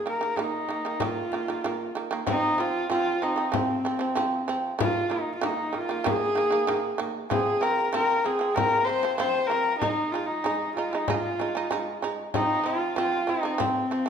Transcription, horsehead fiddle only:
0.08 A#4
0.41 D#4
1.05 F4
2.29 D#4
2.60 F4
2.92 F4
3.23 D#4
3.55 C4
4.79 F4
5.11 D#4
5.35 F4
5.43 D#4
5.78 F4
6.09 G#4
7.30 G#4
7.62 A#4
7.94 A#4
8.25 G#4
8.55 A#4
8.85 C5
9.17 C5
9.48 A#4
9.79 D#4
10.12 F4
10.26 D#4
10.75 F4
10.91 D#4
11.08 F4
12.35 D#4
12.66 F4
12.98 F4
13.30 D#4
13.61 C4

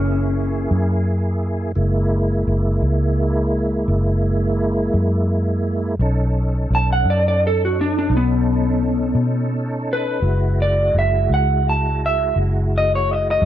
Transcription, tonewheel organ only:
Already playing: A#3 E4 G#4
1.75 G#3 A#3 E4
6.01 C#4 D#4 A4
10.21 G#3 E4 F#4

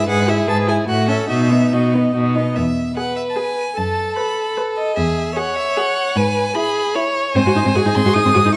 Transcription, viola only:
0.09 G#4
0.29 E4
0.48 G#4
0.68 E4
0.88 A3
1.09 C#4
1.29 D#4
1.52 B3
1.73 D#4
1.95 B3
2.15 D#4
2.37 B3
2.97 G#4
3.37 G#4
4.17 B4
4.58 B4
5.37 G#4
5.77 G#4
6.55 E4
6.96 E4
7.35 C4
7.46 F#4
7.55 D#4
7.65 C4
7.75 F#4
7.86 D#4
7.96 C4
8.06 F#4
8.15 D#4
8.25 C4
8.34 F#4
8.45 D#4

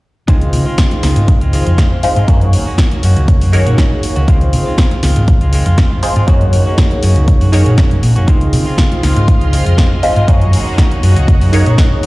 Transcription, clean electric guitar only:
0.28 D#3 G#3 C4 F4
0.66 G#3 C4 F4
0.78 D#3 G#3 C4 F4
1.03 D#3 G#3 C4 F4
1.41 G#3 C4 F4
1.53 D#3 G#3 C4 F4
1.66 G#3 C4 F4
1.78 D#3 G#3 C4 F4
1.91 G#3 C4 F4
2.16 G#3 C4 F4
2.28 D#3 A#3 C#4 F#4
2.66 A#3 C#4 F#4
2.78 D#3 A#3 C#4 F#4
2.91 A#3 C#4 F#4
3.03 D#3 A#3 C#4 F#4
3.41 A#3 C#4 F#4
3.53 D#3 A#3 C#4 F#4
3.66 A#3 C#4 F#4
3.78 D#3 A#3 C#4 F#4
3.91 A#3 C#4 F#4
4.16 A#3 C#4 F#4
4.28 D#3 G#3 C4 F4
4.66 G#3 C4 F4
4.78 D#3 G#3 C4 F4
4.91 G#3 C4 F4
5.03 D#3 G#3 C4 F4
5.41 G#3 C4 F4
5.53 D#3 G#3 C4 F4
5.66 G#3 C4 F4
5.78 D#3 C4 F4
5.91 G#3 C4 F4
6.16 G#3 C4 F4
6.28 D#3 A#3 C#4 F#4
6.66 A#3 C#4 F#4
6.78 D#3 A#3 F#4
7.03 D#3 A#3 C#4 F#4
7.41 A#3 C#4 F#4
7.52 D#3 A#3 C#4 F#4
7.78 D#3 A#3 C#4 F#4
7.91 A#3 C#4 F#4
8.16 A#3 C#4 F#4
8.28 D#3 G#3 C4 F4
8.66 G#3 C4 F4
8.78 D#3 G#3 C4 F4
9.02 D#3 G#3 C4 F4
9.41 G#3 C4 F4
9.52 D#3 G#3 C4 F4
9.66 G#3 C4 F4
9.78 D#3 G#3 C4 F4
9.90 G#3 C4 F4
10.16 G#3 C4 F4
10.28 D#3 A#3 C#4 F#4
10.66 A#3 C#4 F#4
10.78 D#3 A#3 C#4 F#4
11.02 D#3 A#3 C#4 F#4
11.41 A#3 C#4 F#4
11.52 D#3 A#3 C#4 F#4
11.65 A#3 C#4 F#4
11.78 D#3 A#3 C#4 F#4
11.91 A#3 C#4 F#4

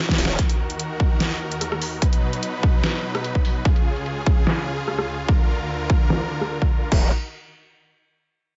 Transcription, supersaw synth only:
0.39 D#2 D#3 F#4 A#4
2.02 B2 F#3 D#4 B4
3.65 C#2 C#3 F4 G#4
5.28 D2 D3 A#4
6.92 D#3 D#4 F#4 A#4

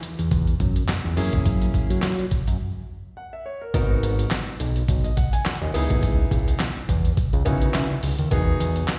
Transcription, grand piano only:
1.16 A#3 C#4 E4 G#4
3.17 F#5
3.33 E5
3.46 C#5
3.61 A#4
3.74 B3 D#4 F#4 A#4
5.04 D#5
5.17 F#5
5.33 G#5
5.46 F#5
5.62 D#5
5.74 B3 D#4 E4 G#4
7.45 B3 D#4 E4 F#4 G#5
7.74 E5
8.31 B3 D#4 F#4 G#4

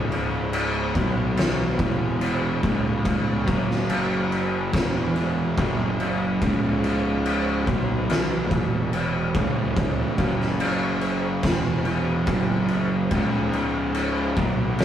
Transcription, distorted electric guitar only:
Already playing: C#2 G#2 C#3
0.94 B2 F#3 B3
1.78 E2 B2 E3
2.63 C#2 G#2 C#3
3.46 F#2 C#3 F#3
4.73 E2 B2 E3
5.59 F#2 C#3 F#3
6.42 C#2 G#2 C#3
7.67 B2 F#3 B3
8.52 E2 B2 E3
9.35 C#2 G#2 C#3
10.18 F#2 C#3 F#3
11.43 E2 B2 E3
12.26 F#2 C#3 F#3
13.11 C#2 G#2 C#3
14.37 B2 F#3 B3

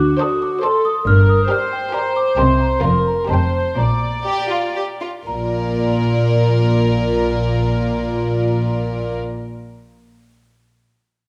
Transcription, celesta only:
0.00 D6
0.20 D#6
0.42 D6
0.63 C6
0.85 D#6
1.07 F6
1.29 D#6
1.51 F6
1.73 G5
1.94 A#5
2.16 D6
2.38 C6
2.61 A#5
2.83 C6
3.06 A#5
3.29 A5
3.77 A#5
5.27 A#5

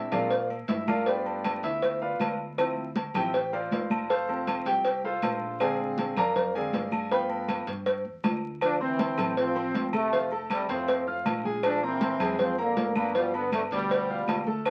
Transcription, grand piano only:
Already playing: C4 D4 G#4
0.12 G#3 C4 D4 F4 A#4 D5 F5
0.69 E4 E5
0.88 F4 A#4 D5 F5
1.06 A3 B3 D4 F4 G4 B4 D5
1.64 E4 E5
2.02 F4 B4 D5 F5
2.58 F3 C4 E4
3.15 F3 C4 E4 G4 G5
3.53 F4 C5 D5 F5
4.10 A4 C5 F5 A5
4.28 F3 A3 C4
4.66 G4 G5
5.05 F4 A4 C5 F5
5.60 D3 G#3 C4 G#4 D5 F5 G#5
6.18 A#4 D5 F5 A#5
6.55 D3 G#3 C4 G#4 D5 F5 G#5
7.11 F3 A3 B3 B4 F5 G5 B5
8.80 C4 C5 C6
9.18 A3 A4 A5
9.55 C4 C5 C6
9.94 A3 A4 A5
10.12 F3 F4 F5
10.32 A3 A4 A5
10.70 C4 C5 C6
11.07 F4 F5 F6
11.45 G#3 G#4 G#5
11.83 A#3 A#4 A#5
12.20 G#3 G#4 G#5
12.58 A#3 A#4 A#5
12.96 B3 B4 B5
13.15 F3 F4 F5
13.34 B3 B4 B5
13.72 D4 D5 D6
14.10 F4 F5 F6
14.47 A3 A4 A5

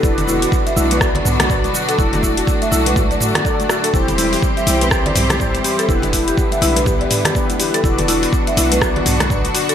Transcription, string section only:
Already playing: D3
0.03 B2 F#3 D4 F#4
1.99 A2 D3
3.94 E3 G3 C4 E4 G4
5.89 D3 B3
7.84 B2 D3 F#3 D4 F#4

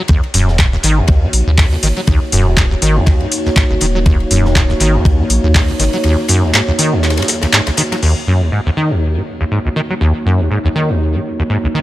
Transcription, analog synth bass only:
0.34 D#1
0.84 G#1
1.08 D#2
1.33 A#1
1.47 D#2
1.83 G#1
2.32 D#1
2.82 G#1
3.71 G#1
3.81 D#1
4.31 D#1
4.80 G#1
5.05 D#2
5.30 A#1
5.44 D#2
5.80 G#1

